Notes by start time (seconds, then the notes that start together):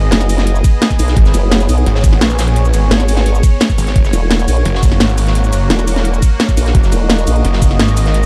Already playing: G#1 B3 G#4 D#5
0.11 F#1, snare, closed hi-hat
0.21 snare, closed hi-hat, cabasa
0.29 closed hi-hat, open hi-hat, ride, cabasa
0.38 snare, closed hi-hat
0.47 closed hi-hat
0.55 closed hi-hat, cabasa
0.64 kick, closed hi-hat, ride, cabasa
0.82 snare, closed hi-hat
0.90 kick, closed hi-hat, cabasa
0.99 B1, closed hi-hat, open hi-hat, ride, cabasa
1.08 snare, closed hi-hat
1.16 G#1 C#5, kick, closed hi-hat
1.25 snare, cabasa
1.34 F#1, closed hi-hat, ride, cabasa
1.52 snare, closed hi-hat
1.60 closed hi-hat, cabasa
1.69 B1, closed hi-hat, open hi-hat, ride, cabasa
1.78 closed hi-hat
1.86 G#1, snare, closed hi-hat
1.96 snare
2.04 kick, closed hi-hat, ride, cabasa
2.13 snare
2.21 A#1, snare, closed hi-hat
2.30 cabasa
2.39 snare, closed hi-hat, open hi-hat, ride, cabasa
2.47 closed hi-hat
2.56 closed hi-hat
2.65 cabasa
2.74 G#1, closed hi-hat, ride, cabasa
2.91 G#1, snare, closed hi-hat
3.00 snare, closed hi-hat, cabasa
3.09 closed hi-hat, open hi-hat, ride, cabasa
3.16 snare, closed hi-hat
3.26 closed hi-hat
3.35 cabasa
3.43 kick, closed hi-hat, ride, cabasa
3.60 snare, closed hi-hat
3.70 kick, closed hi-hat, cabasa
3.78 G#1, closed hi-hat, open hi-hat, ride, cabasa
3.87 snare, closed hi-hat
3.96 F#1 A#3 F#4, kick, closed hi-hat
4.04 snare, cabasa
4.13 E1, closed hi-hat, ride, cabasa
4.31 snare, closed hi-hat
4.39 closed hi-hat, cabasa
4.48 A#1, closed hi-hat, open hi-hat, ride, cabasa
4.57 closed hi-hat
4.65 F#1, snare, closed hi-hat
4.75 snare
4.83 kick, closed hi-hat, ride, cabasa
4.92 snare
5.00 G#1, snare, closed hi-hat
5.09 cabasa
5.18 closed hi-hat, open hi-hat, ride, cabasa
5.27 snare, closed hi-hat
5.35 closed hi-hat
5.44 cabasa
5.53 F#1, closed hi-hat, ride, cabasa
5.70 E1, snare, closed hi-hat
5.79 snare, closed hi-hat, cabasa
5.87 closed hi-hat, open hi-hat, ride, cabasa
5.96 snare, closed hi-hat
6.04 closed hi-hat
6.13 closed hi-hat, cabasa
6.22 kick, closed hi-hat, ride, cabasa
6.40 snare, closed hi-hat
6.49 kick, closed hi-hat, cabasa
6.57 A#1, closed hi-hat, open hi-hat, ride, cabasa
6.66 snare, closed hi-hat
6.75 F#1 D#5, kick, closed hi-hat
6.83 snare, cabasa
6.92 E1, closed hi-hat, ride, cabasa
7.09 snare, closed hi-hat
7.18 closed hi-hat, cabasa
7.27 A#1, closed hi-hat, open hi-hat, ride, cabasa
7.36 closed hi-hat
7.45 F#1, snare, closed hi-hat
7.53 snare
7.62 kick, closed hi-hat, ride, cabasa
7.71 snare
7.79 G#1, snare, closed hi-hat
7.88 cabasa
7.97 closed hi-hat, open hi-hat, ride, cabasa
8.06 snare, closed hi-hat
8.14 closed hi-hat